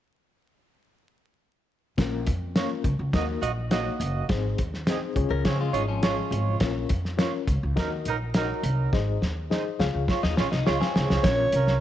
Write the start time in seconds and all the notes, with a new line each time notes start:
1.97 A#1 A#3 C#4 F4 A#4, kick, snare, closed hi-hat
2.26 F2, kick, closed hi-hat
2.55 A#3 C#4 F4 A#4 C#5, snare, closed hi-hat
2.84 C#2, kick, closed hi-hat
2.99 C#2
3.13 D#2 A#3 D#4 F#4 A#4 D#5, kick, snare, closed hi-hat
3.41 A#1 A#3 F#4 D#5, closed hi-hat
3.71 A#3 D#4 F#4 C#5 D#5, snare, closed hi-hat
4.00 F#1, closed hi-hat
4.29 G#1 C4 D#4 G#4 C5, kick, snare, closed hi-hat
4.58 D#2, kick, closed hi-hat
4.74 snare
4.87 C4 D#4 G#4 C5 D#5, snare, closed hi-hat
5.15 C#2 C#4 F4 G#4 C#5, kick, closed hi-hat
5.30 C#2 C#4 A#4
5.45 C#3 G#3 C4 F4 G#4 C#5, kick, snare, closed hi-hat
5.60 G#3 F4
5.73 G#1 G#3 D#4 F4 C#5, closed hi-hat
5.88 F3 C#4
6.02 G#3 C#4 F4 G#4 C#5, snare, closed hi-hat
6.31 G#1, closed hi-hat
6.60 A#1 C#4 F4 A#4 C#5, kick, snare, closed hi-hat
6.89 F2, kick, closed hi-hat
7.05 snare
7.17 A#3 C#4 F4 A#4 C#5, snare, closed hi-hat
7.47 C#2, kick, closed hi-hat
7.63 C#2
7.76 D#2 F#3 D#4 F#4 A#4 D#5, kick, snare, closed hi-hat
8.05 A#1 F#3 D#4 A#4, closed hi-hat
8.34 F#3 D#4 F#4 A#4 D#5, snare, closed hi-hat
8.63 C2, closed hi-hat
8.92 G#1 D#4 G#4 C5 D#5, kick, snare
9.21 D#2, snare
9.50 G#3 D#4 G#4 C5 D#5, snare
9.79 C#2 F4 G#4 C#5 F5, snare
9.94 C#2
10.08 G#3 F4 C#5, kick, snare
10.23 D#2 D#4, snare
10.37 A#1 F3 G#3 C#4 F4 C#5, snare
10.51 C2 D#4, snare
10.66 C#2 G#3 F4 G#4 C#5 F5, snare
10.81 C4 G#4, snare
10.96 C#2, snare
11.10 C2, snare
11.23 A#1 C#4 F4 A#4 C#5, kick, snare, closed hi-hat
11.52 C2 F3 C#4 A#4, closed hi-hat
11.67 snare